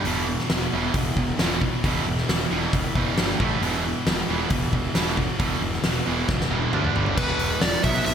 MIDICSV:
0, 0, Header, 1, 6, 480
1, 0, Start_track
1, 0, Key_signature, 1, "minor"
1, 0, Tempo, 446097
1, 54, Time_signature, 4, 2, 24, 8
1, 8761, End_track
2, 0, Start_track
2, 0, Title_t, "Lead electric guitar"
2, 0, Program_c, 0, 29
2, 7718, Note_on_c, 0, 71, 89
2, 8193, Note_on_c, 0, 74, 95
2, 8220, Note_off_c, 0, 71, 0
2, 8430, Note_off_c, 0, 74, 0
2, 8434, Note_on_c, 0, 76, 101
2, 8656, Note_off_c, 0, 76, 0
2, 8669, Note_on_c, 0, 76, 115
2, 8761, Note_off_c, 0, 76, 0
2, 8761, End_track
3, 0, Start_track
3, 0, Title_t, "Distorted electric guitar"
3, 0, Program_c, 1, 30
3, 554, Note_on_c, 1, 52, 98
3, 772, Note_off_c, 1, 52, 0
3, 1026, Note_on_c, 1, 52, 107
3, 1486, Note_off_c, 1, 52, 0
3, 1736, Note_on_c, 1, 52, 85
3, 1965, Note_off_c, 1, 52, 0
3, 2466, Note_on_c, 1, 52, 93
3, 2690, Note_off_c, 1, 52, 0
3, 2934, Note_on_c, 1, 52, 106
3, 3399, Note_off_c, 1, 52, 0
3, 4374, Note_on_c, 1, 52, 93
3, 4609, Note_off_c, 1, 52, 0
3, 4860, Note_on_c, 1, 52, 104
3, 5328, Note_off_c, 1, 52, 0
3, 5574, Note_on_c, 1, 52, 88
3, 5791, Note_off_c, 1, 52, 0
3, 6283, Note_on_c, 1, 52, 93
3, 6517, Note_off_c, 1, 52, 0
3, 6768, Note_on_c, 1, 52, 95
3, 7236, Note_off_c, 1, 52, 0
3, 8761, End_track
4, 0, Start_track
4, 0, Title_t, "Distorted electric guitar"
4, 0, Program_c, 2, 30
4, 50, Note_on_c, 2, 40, 83
4, 57, Note_on_c, 2, 47, 87
4, 57, Note_on_c, 2, 52, 96
4, 277, Note_off_c, 2, 40, 0
4, 281, Note_off_c, 2, 47, 0
4, 281, Note_off_c, 2, 52, 0
4, 294, Note_on_c, 2, 40, 76
4, 299, Note_on_c, 2, 47, 72
4, 509, Note_off_c, 2, 40, 0
4, 512, Note_off_c, 2, 47, 0
4, 530, Note_on_c, 2, 40, 72
4, 540, Note_on_c, 2, 47, 77
4, 747, Note_off_c, 2, 40, 0
4, 752, Note_off_c, 2, 47, 0
4, 777, Note_on_c, 2, 40, 81
4, 783, Note_on_c, 2, 47, 88
4, 796, Note_on_c, 2, 52, 92
4, 1000, Note_off_c, 2, 40, 0
4, 1004, Note_off_c, 2, 47, 0
4, 1010, Note_off_c, 2, 52, 0
4, 1028, Note_on_c, 2, 40, 70
4, 1033, Note_on_c, 2, 47, 90
4, 1236, Note_off_c, 2, 40, 0
4, 1239, Note_off_c, 2, 47, 0
4, 1254, Note_on_c, 2, 40, 69
4, 1260, Note_on_c, 2, 47, 77
4, 1469, Note_off_c, 2, 40, 0
4, 1472, Note_off_c, 2, 47, 0
4, 1496, Note_on_c, 2, 40, 83
4, 1503, Note_on_c, 2, 47, 91
4, 1509, Note_on_c, 2, 52, 102
4, 1720, Note_off_c, 2, 40, 0
4, 1724, Note_off_c, 2, 47, 0
4, 1726, Note_off_c, 2, 52, 0
4, 1742, Note_on_c, 2, 40, 66
4, 1745, Note_on_c, 2, 47, 80
4, 1954, Note_off_c, 2, 40, 0
4, 1955, Note_off_c, 2, 47, 0
4, 1988, Note_on_c, 2, 40, 88
4, 1997, Note_on_c, 2, 47, 99
4, 2001, Note_on_c, 2, 52, 99
4, 2206, Note_off_c, 2, 40, 0
4, 2211, Note_off_c, 2, 47, 0
4, 2213, Note_off_c, 2, 52, 0
4, 2237, Note_on_c, 2, 40, 72
4, 2239, Note_on_c, 2, 47, 81
4, 2441, Note_off_c, 2, 40, 0
4, 2442, Note_off_c, 2, 47, 0
4, 2470, Note_on_c, 2, 40, 79
4, 2472, Note_on_c, 2, 47, 80
4, 2678, Note_off_c, 2, 40, 0
4, 2678, Note_off_c, 2, 47, 0
4, 2704, Note_on_c, 2, 40, 90
4, 2711, Note_on_c, 2, 52, 97
4, 2712, Note_on_c, 2, 47, 84
4, 2924, Note_off_c, 2, 40, 0
4, 2928, Note_off_c, 2, 47, 0
4, 2928, Note_off_c, 2, 52, 0
4, 2951, Note_on_c, 2, 40, 74
4, 2952, Note_on_c, 2, 47, 78
4, 3158, Note_off_c, 2, 40, 0
4, 3158, Note_off_c, 2, 47, 0
4, 3192, Note_on_c, 2, 40, 97
4, 3196, Note_on_c, 2, 47, 92
4, 3202, Note_on_c, 2, 52, 109
4, 3408, Note_off_c, 2, 40, 0
4, 3410, Note_off_c, 2, 47, 0
4, 3413, Note_off_c, 2, 52, 0
4, 3422, Note_on_c, 2, 43, 87
4, 3433, Note_on_c, 2, 55, 88
4, 3434, Note_on_c, 2, 50, 90
4, 3643, Note_off_c, 2, 43, 0
4, 3648, Note_off_c, 2, 55, 0
4, 3649, Note_off_c, 2, 50, 0
4, 3675, Note_on_c, 2, 45, 90
4, 3678, Note_on_c, 2, 52, 91
4, 3687, Note_on_c, 2, 57, 95
4, 3890, Note_off_c, 2, 45, 0
4, 3891, Note_off_c, 2, 52, 0
4, 3896, Note_off_c, 2, 57, 0
4, 3904, Note_on_c, 2, 40, 86
4, 3913, Note_on_c, 2, 52, 102
4, 3914, Note_on_c, 2, 47, 93
4, 4124, Note_off_c, 2, 40, 0
4, 4129, Note_off_c, 2, 47, 0
4, 4129, Note_off_c, 2, 52, 0
4, 4152, Note_on_c, 2, 40, 76
4, 4162, Note_on_c, 2, 47, 85
4, 4359, Note_off_c, 2, 40, 0
4, 4364, Note_off_c, 2, 47, 0
4, 4393, Note_on_c, 2, 40, 77
4, 4396, Note_on_c, 2, 47, 85
4, 4599, Note_off_c, 2, 40, 0
4, 4601, Note_off_c, 2, 47, 0
4, 4615, Note_on_c, 2, 40, 93
4, 4623, Note_on_c, 2, 47, 88
4, 4628, Note_on_c, 2, 52, 93
4, 4840, Note_off_c, 2, 40, 0
4, 4844, Note_off_c, 2, 47, 0
4, 4846, Note_off_c, 2, 52, 0
4, 4881, Note_on_c, 2, 40, 77
4, 4886, Note_on_c, 2, 47, 91
4, 5083, Note_off_c, 2, 40, 0
4, 5086, Note_off_c, 2, 47, 0
4, 5109, Note_on_c, 2, 47, 81
4, 5111, Note_on_c, 2, 40, 75
4, 5317, Note_off_c, 2, 47, 0
4, 5318, Note_off_c, 2, 40, 0
4, 5353, Note_on_c, 2, 40, 83
4, 5365, Note_on_c, 2, 47, 97
4, 5368, Note_on_c, 2, 52, 87
4, 5569, Note_off_c, 2, 40, 0
4, 5575, Note_off_c, 2, 47, 0
4, 5576, Note_off_c, 2, 52, 0
4, 5584, Note_on_c, 2, 40, 76
4, 5593, Note_on_c, 2, 47, 78
4, 5794, Note_off_c, 2, 40, 0
4, 5799, Note_off_c, 2, 47, 0
4, 5818, Note_on_c, 2, 40, 94
4, 5829, Note_on_c, 2, 47, 89
4, 5833, Note_on_c, 2, 52, 100
4, 6041, Note_off_c, 2, 40, 0
4, 6047, Note_off_c, 2, 47, 0
4, 6049, Note_off_c, 2, 52, 0
4, 6062, Note_on_c, 2, 40, 68
4, 6073, Note_on_c, 2, 47, 75
4, 6274, Note_off_c, 2, 40, 0
4, 6279, Note_off_c, 2, 47, 0
4, 6304, Note_on_c, 2, 40, 74
4, 6310, Note_on_c, 2, 47, 80
4, 6515, Note_off_c, 2, 40, 0
4, 6517, Note_off_c, 2, 47, 0
4, 6537, Note_on_c, 2, 40, 85
4, 6545, Note_on_c, 2, 47, 84
4, 6548, Note_on_c, 2, 52, 102
4, 6761, Note_off_c, 2, 40, 0
4, 6765, Note_off_c, 2, 47, 0
4, 6766, Note_off_c, 2, 52, 0
4, 6776, Note_on_c, 2, 40, 74
4, 6776, Note_on_c, 2, 47, 85
4, 6979, Note_off_c, 2, 40, 0
4, 6986, Note_off_c, 2, 47, 0
4, 6992, Note_on_c, 2, 40, 86
4, 6999, Note_on_c, 2, 47, 96
4, 7008, Note_on_c, 2, 52, 102
4, 7228, Note_off_c, 2, 40, 0
4, 7232, Note_off_c, 2, 47, 0
4, 7236, Note_off_c, 2, 52, 0
4, 7245, Note_on_c, 2, 57, 92
4, 7246, Note_on_c, 2, 50, 89
4, 7254, Note_on_c, 2, 62, 104
4, 7472, Note_off_c, 2, 50, 0
4, 7475, Note_off_c, 2, 57, 0
4, 7479, Note_off_c, 2, 62, 0
4, 7479, Note_on_c, 2, 43, 94
4, 7485, Note_on_c, 2, 50, 86
4, 7486, Note_on_c, 2, 55, 91
4, 7700, Note_off_c, 2, 43, 0
4, 7704, Note_on_c, 2, 40, 84
4, 7714, Note_off_c, 2, 50, 0
4, 7715, Note_off_c, 2, 55, 0
4, 7724, Note_on_c, 2, 47, 101
4, 7731, Note_on_c, 2, 52, 100
4, 8416, Note_off_c, 2, 47, 0
4, 8424, Note_off_c, 2, 40, 0
4, 8429, Note_on_c, 2, 47, 84
4, 8437, Note_off_c, 2, 52, 0
4, 8451, Note_on_c, 2, 54, 99
4, 8460, Note_on_c, 2, 59, 103
4, 8761, Note_off_c, 2, 47, 0
4, 8761, Note_off_c, 2, 54, 0
4, 8761, Note_off_c, 2, 59, 0
4, 8761, End_track
5, 0, Start_track
5, 0, Title_t, "Picked electric bass"
5, 0, Program_c, 3, 34
5, 59, Note_on_c, 3, 28, 93
5, 391, Note_off_c, 3, 28, 0
5, 538, Note_on_c, 3, 28, 83
5, 703, Note_off_c, 3, 28, 0
5, 791, Note_on_c, 3, 28, 91
5, 952, Note_off_c, 3, 28, 0
5, 1013, Note_on_c, 3, 28, 88
5, 1180, Note_off_c, 3, 28, 0
5, 1253, Note_on_c, 3, 28, 87
5, 1420, Note_off_c, 3, 28, 0
5, 1499, Note_on_c, 3, 28, 88
5, 1831, Note_off_c, 3, 28, 0
5, 1979, Note_on_c, 3, 28, 97
5, 2144, Note_off_c, 3, 28, 0
5, 2228, Note_on_c, 3, 28, 84
5, 2390, Note_off_c, 3, 28, 0
5, 2464, Note_on_c, 3, 28, 92
5, 2627, Note_off_c, 3, 28, 0
5, 2703, Note_on_c, 3, 28, 89
5, 2866, Note_off_c, 3, 28, 0
5, 2946, Note_on_c, 3, 28, 93
5, 3108, Note_off_c, 3, 28, 0
5, 3182, Note_on_c, 3, 30, 84
5, 3346, Note_off_c, 3, 30, 0
5, 3423, Note_on_c, 3, 31, 89
5, 3587, Note_off_c, 3, 31, 0
5, 3657, Note_on_c, 3, 33, 84
5, 3823, Note_off_c, 3, 33, 0
5, 3891, Note_on_c, 3, 28, 96
5, 4226, Note_off_c, 3, 28, 0
5, 4371, Note_on_c, 3, 28, 91
5, 4539, Note_off_c, 3, 28, 0
5, 4615, Note_on_c, 3, 28, 90
5, 4782, Note_off_c, 3, 28, 0
5, 4848, Note_on_c, 3, 28, 93
5, 5017, Note_off_c, 3, 28, 0
5, 5086, Note_on_c, 3, 28, 89
5, 5256, Note_off_c, 3, 28, 0
5, 5333, Note_on_c, 3, 28, 84
5, 5667, Note_off_c, 3, 28, 0
5, 5806, Note_on_c, 3, 28, 95
5, 5976, Note_off_c, 3, 28, 0
5, 6047, Note_on_c, 3, 28, 88
5, 6216, Note_off_c, 3, 28, 0
5, 6290, Note_on_c, 3, 28, 90
5, 6458, Note_off_c, 3, 28, 0
5, 6535, Note_on_c, 3, 28, 89
5, 6701, Note_off_c, 3, 28, 0
5, 6764, Note_on_c, 3, 28, 90
5, 6934, Note_off_c, 3, 28, 0
5, 6991, Note_on_c, 3, 28, 92
5, 7166, Note_off_c, 3, 28, 0
5, 7237, Note_on_c, 3, 38, 84
5, 7410, Note_off_c, 3, 38, 0
5, 7485, Note_on_c, 3, 31, 83
5, 7655, Note_off_c, 3, 31, 0
5, 7716, Note_on_c, 3, 28, 98
5, 7869, Note_off_c, 3, 28, 0
5, 7955, Note_on_c, 3, 28, 93
5, 8108, Note_off_c, 3, 28, 0
5, 8191, Note_on_c, 3, 28, 89
5, 8345, Note_off_c, 3, 28, 0
5, 8439, Note_on_c, 3, 35, 96
5, 8591, Note_off_c, 3, 35, 0
5, 8679, Note_on_c, 3, 35, 90
5, 8761, Note_off_c, 3, 35, 0
5, 8761, End_track
6, 0, Start_track
6, 0, Title_t, "Drums"
6, 52, Note_on_c, 9, 46, 60
6, 160, Note_off_c, 9, 46, 0
6, 424, Note_on_c, 9, 38, 33
6, 532, Note_off_c, 9, 38, 0
6, 534, Note_on_c, 9, 46, 54
6, 536, Note_on_c, 9, 38, 112
6, 642, Note_off_c, 9, 46, 0
6, 643, Note_off_c, 9, 38, 0
6, 1010, Note_on_c, 9, 46, 62
6, 1014, Note_on_c, 9, 36, 108
6, 1117, Note_off_c, 9, 46, 0
6, 1121, Note_off_c, 9, 36, 0
6, 1256, Note_on_c, 9, 36, 89
6, 1364, Note_off_c, 9, 36, 0
6, 1497, Note_on_c, 9, 46, 60
6, 1498, Note_on_c, 9, 38, 108
6, 1604, Note_off_c, 9, 46, 0
6, 1605, Note_off_c, 9, 38, 0
6, 1738, Note_on_c, 9, 36, 81
6, 1846, Note_off_c, 9, 36, 0
6, 1980, Note_on_c, 9, 36, 113
6, 1983, Note_on_c, 9, 46, 64
6, 2087, Note_off_c, 9, 36, 0
6, 2091, Note_off_c, 9, 46, 0
6, 2348, Note_on_c, 9, 38, 32
6, 2455, Note_off_c, 9, 38, 0
6, 2467, Note_on_c, 9, 46, 58
6, 2468, Note_on_c, 9, 38, 108
6, 2574, Note_off_c, 9, 46, 0
6, 2575, Note_off_c, 9, 38, 0
6, 2940, Note_on_c, 9, 36, 110
6, 2946, Note_on_c, 9, 46, 55
6, 3048, Note_off_c, 9, 36, 0
6, 3053, Note_off_c, 9, 46, 0
6, 3179, Note_on_c, 9, 36, 89
6, 3287, Note_off_c, 9, 36, 0
6, 3416, Note_on_c, 9, 46, 56
6, 3417, Note_on_c, 9, 38, 110
6, 3524, Note_off_c, 9, 46, 0
6, 3525, Note_off_c, 9, 38, 0
6, 3658, Note_on_c, 9, 36, 103
6, 3766, Note_off_c, 9, 36, 0
6, 3900, Note_on_c, 9, 46, 55
6, 4008, Note_off_c, 9, 46, 0
6, 4375, Note_on_c, 9, 46, 59
6, 4376, Note_on_c, 9, 38, 108
6, 4482, Note_off_c, 9, 46, 0
6, 4483, Note_off_c, 9, 38, 0
6, 4842, Note_on_c, 9, 46, 60
6, 4850, Note_on_c, 9, 36, 113
6, 4950, Note_off_c, 9, 46, 0
6, 4957, Note_off_c, 9, 36, 0
6, 5089, Note_on_c, 9, 36, 85
6, 5197, Note_off_c, 9, 36, 0
6, 5325, Note_on_c, 9, 46, 63
6, 5326, Note_on_c, 9, 38, 109
6, 5433, Note_off_c, 9, 46, 0
6, 5434, Note_off_c, 9, 38, 0
6, 5567, Note_on_c, 9, 36, 86
6, 5674, Note_off_c, 9, 36, 0
6, 5808, Note_on_c, 9, 36, 113
6, 5808, Note_on_c, 9, 46, 64
6, 5915, Note_off_c, 9, 36, 0
6, 5916, Note_off_c, 9, 46, 0
6, 6166, Note_on_c, 9, 38, 32
6, 6274, Note_off_c, 9, 38, 0
6, 6279, Note_on_c, 9, 46, 61
6, 6280, Note_on_c, 9, 38, 104
6, 6387, Note_off_c, 9, 46, 0
6, 6388, Note_off_c, 9, 38, 0
6, 6765, Note_on_c, 9, 36, 112
6, 6770, Note_on_c, 9, 38, 64
6, 6873, Note_off_c, 9, 36, 0
6, 6878, Note_off_c, 9, 38, 0
6, 6897, Note_on_c, 9, 38, 60
6, 7005, Note_off_c, 9, 38, 0
6, 7012, Note_on_c, 9, 48, 73
6, 7119, Note_off_c, 9, 48, 0
6, 7126, Note_on_c, 9, 48, 62
6, 7233, Note_off_c, 9, 48, 0
6, 7241, Note_on_c, 9, 47, 85
6, 7349, Note_off_c, 9, 47, 0
6, 7363, Note_on_c, 9, 45, 77
6, 7471, Note_off_c, 9, 45, 0
6, 7485, Note_on_c, 9, 43, 90
6, 7592, Note_off_c, 9, 43, 0
6, 7599, Note_on_c, 9, 43, 80
6, 7707, Note_off_c, 9, 43, 0
6, 7719, Note_on_c, 9, 49, 117
6, 7721, Note_on_c, 9, 36, 117
6, 7827, Note_off_c, 9, 49, 0
6, 7828, Note_off_c, 9, 36, 0
6, 7954, Note_on_c, 9, 46, 66
6, 8062, Note_off_c, 9, 46, 0
6, 8192, Note_on_c, 9, 46, 87
6, 8193, Note_on_c, 9, 38, 110
6, 8300, Note_off_c, 9, 46, 0
6, 8301, Note_off_c, 9, 38, 0
6, 8427, Note_on_c, 9, 46, 62
6, 8436, Note_on_c, 9, 36, 100
6, 8535, Note_off_c, 9, 46, 0
6, 8543, Note_off_c, 9, 36, 0
6, 8547, Note_on_c, 9, 38, 36
6, 8655, Note_off_c, 9, 38, 0
6, 8672, Note_on_c, 9, 46, 87
6, 8761, Note_off_c, 9, 46, 0
6, 8761, End_track
0, 0, End_of_file